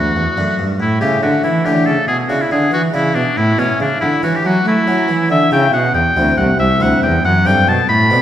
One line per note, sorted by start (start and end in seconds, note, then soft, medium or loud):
0.00 0.14 D2 medium
0.00 0.15 D2 medium
0.00 0.20 D4 soft
0.00 0.70 F#4 medium
0.15 0.23 E2 medium
0.15 0.35 E2 soft
0.36 0.44 F#2 medium
0.36 0.57 F#2 medium
0.36 0.53 A3 soft
0.36 0.68 D4 soft
0.59 0.79 G2 medium
0.59 0.78 G2 soft
0.80 0.99 A2 medium
0.80 1.03 A2 medium
0.80 1.00 E4 medium
1.01 1.21 C#3 soft
1.01 1.22 C#3 medium
1.01 1.48 A3 soft
1.01 1.48 C#4 soft
1.01 1.48 E4 soft
1.01 1.22 G4 medium
1.23 1.31 D3 medium
1.23 1.42 D3 soft
1.23 1.43 F#4 medium
1.44 1.67 E3 medium
1.44 1.63 E3 medium
1.44 1.67 E4 medium
1.65 1.86 D3 medium
1.65 1.85 D3 soft
1.65 1.96 A3 soft
1.65 1.97 C#4 soft
1.65 1.97 E4 soft
1.65 1.88 G4 medium
1.86 1.95 C#3 medium
1.86 2.06 C#3 medium
1.86 2.07 A4 medium
2.07 2.28 B2 medium
2.07 2.27 B2 soft
2.07 2.17 G#4 medium
2.29 2.37 C#3 medium
2.29 2.49 C#3 medium
2.29 2.76 D4 soft
2.29 2.76 E4 soft
2.29 2.43 F#4 medium
2.42 2.51 E4 medium
2.50 2.71 D3 medium
2.50 2.70 D3 medium
2.50 2.72 G#4 medium
2.72 2.91 E3 medium
2.72 2.93 E3 medium
2.72 2.83 F#4 medium
2.94 3.15 C#3 medium
2.94 3.13 C#3 medium
2.94 3.25 D4 soft
2.94 3.25 E4 soft
2.94 3.17 E4 medium
3.15 3.23 B2 medium
3.15 3.35 B2 medium
3.15 3.39 D4 medium
3.37 3.58 A2 medium
3.37 3.57 A2 medium
3.37 3.61 E4 loud
3.58 3.66 B2 medium
3.58 3.78 B2 soft
3.58 4.05 C#4 soft
3.58 3.80 C#4 medium
3.58 4.05 E4 soft
3.80 3.99 C#3 medium
3.80 3.88 C#3 medium
3.80 4.00 D4 medium
4.01 4.10 D3 medium
4.01 4.21 D3 medium
4.01 4.22 E4 medium
4.23 4.42 E3 medium
4.23 4.32 E3 medium
4.23 4.54 C#4 soft
4.23 4.54 E4 medium
4.23 4.37 F#4 medium
4.36 4.47 G4 medium
4.44 4.64 F#3 medium
4.44 4.65 F#3 medium
4.44 4.67 F#4 medium
4.65 4.85 A3 medium
4.65 4.87 A3 medium
4.65 5.30 E4 loud
4.87 5.06 F#3 medium
4.87 5.11 F#3 medium
4.87 5.34 C#4 soft
4.87 5.34 E4 medium
5.08 5.27 E3 medium
5.08 5.29 E3 medium
5.30 5.49 D3 medium
5.30 5.38 D3 medium
5.30 5.52 E5 loud
5.51 5.71 C#3 medium
5.51 5.72 C#3 medium
5.51 5.82 C#4 soft
5.51 5.83 E4 soft
5.51 5.73 G5 loud
5.73 5.94 B2 medium
5.73 5.92 B2 medium
5.73 5.94 F#5 medium
5.94 6.02 E2 medium
5.94 6.14 E2 medium
5.94 6.37 G5 loud
6.16 6.37 D2 medium
6.16 6.36 D2 medium
6.16 6.63 C4 soft
6.16 6.63 E4 soft
6.37 6.57 C2 medium
6.37 6.46 C2 medium
6.37 6.58 F#5 medium
6.59 6.79 C2 medium
6.59 6.80 C2 medium
6.59 6.84 E5 loud
6.80 7.00 D2 medium
6.80 7.02 D2 medium
6.80 7.12 C4 soft
6.80 7.12 E4 medium
6.80 7.02 F#5 medium
7.02 7.23 E2 medium
7.02 7.22 E2 medium
7.02 7.24 G5 medium
7.25 7.47 F#2 medium
7.25 7.44 F#2 medium
7.25 7.48 F#5 loud
7.45 7.65 G2 medium
7.45 7.67 G2 medium
7.45 7.61 C4 soft
7.45 7.93 D4 soft
7.45 7.93 A4 medium
7.45 7.70 G5 loud
7.67 7.87 B2 medium
7.67 7.89 B2 medium
7.67 7.88 A5 loud
7.89 8.08 A2 medium
7.89 8.12 A2 medium
7.89 8.22 B5 loud
8.10 8.22 B2 medium
8.10 8.22 C4 soft
8.10 8.22 D4 soft
8.10 8.22 A4 soft